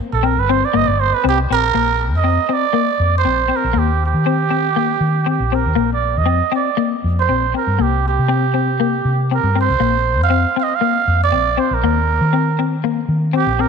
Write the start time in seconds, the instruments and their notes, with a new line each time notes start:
0.13 fingered electric bass A#1, muted trumpet A4
0.23 clean electric guitar C4, muted trumpet A#4
0.38 fingered electric bass G1, muted trumpet B4
0.49 clean electric guitar C4, muted trumpet C5
0.65 muted trumpet D5
0.73 fingered electric bass G1, clean electric guitar A#3, muted trumpet D#5
0.87 fingered electric bass G1, muted trumpet D5
1.00 muted trumpet C5
1.14 muted trumpet B4
1.24 fingered electric bass C2, clean electric guitar C4
1.29 muted trumpet G4
1.50 fingered electric bass A#1, clean electric guitar C4, muted trumpet A#4
1.74 fingered electric bass A#1, clean electric guitar A#3
2.14 fingered electric bass F2, muted trumpet D#5
2.24 clean electric guitar C4
2.49 clean electric guitar C4
2.53 muted trumpet D5
2.73 clean electric guitar A#3
3.00 fingered electric bass F2
3.18 muted trumpet C5
3.25 fingered electric bass A#1, clean electric guitar C4
3.48 clean electric guitar C4
3.56 muted trumpet A#4
3.64 fingered electric bass A#1
3.73 fingered electric bass D#2, clean electric guitar A#3
3.79 muted trumpet G4
4.06 muted trumpet G4
4.14 fingered electric bass D#3
4.26 clean electric guitar C4
4.50 clean electric guitar C4
4.76 clean electric guitar A#3
5.00 fingered electric bass D#3
5.26 clean electric guitar C4, muted trumpet G4
5.40 fingered electric bass A#1
5.52 clean electric guitar C4, muted trumpet A#4
5.66 fingered electric bass D#2
5.75 fingered electric bass A#1, clean electric guitar A#3
5.93 muted trumpet D5
6.17 fingered electric bass F2, muted trumpet D#5
6.26 clean electric guitar C4
6.52 clean electric guitar C4
6.56 muted trumpet D5
6.77 clean electric guitar A#3
7.04 fingered electric bass F2
7.20 muted trumpet C5
7.29 fingered electric bass A#1, clean electric guitar C4
7.54 clean electric guitar C4, muted trumpet A#4
7.67 fingered electric bass G2
7.79 fingered electric bass C2, clean electric guitar A#3, muted trumpet G4
8.08 muted trumpet G4
8.19 fingered electric bass C3
8.28 clean electric guitar C4
8.54 clean electric guitar C4
8.80 clean electric guitar A#3
9.05 fingered electric bass C3
9.31 clean electric guitar C4, muted trumpet A#4
9.43 fingered electric bass G2
9.55 clean electric guitar C4
9.61 muted trumpet C5
9.69 fingered electric bass C2
9.80 fingered electric bass A#1, clean electric guitar A#3
10.20 fingered electric bass F2, muted trumpet F5
10.30 clean electric guitar C4
10.56 clean electric guitar C4, muted trumpet F5
10.63 muted trumpet D#5
10.75 muted trumpet F5
10.81 clean electric guitar A#3
11.07 fingered electric bass F2
11.24 muted trumpet D5
11.32 fingered electric bass A#1, clean electric guitar C4
11.57 clean electric guitar C4, muted trumpet C5
11.71 fingered electric bass A#1, muted trumpet A#4
11.83 fingered electric bass D#2, clean electric guitar A#3
12.21 fingered electric bass D#3
12.33 clean electric guitar C4
12.59 clean electric guitar C4
12.84 clean electric guitar A#3
13.09 fingered electric bass D#3
13.33 clean electric guitar C4, muted trumpet G4
13.47 fingered electric bass A#1
13.59 clean electric guitar C4, muted trumpet A#4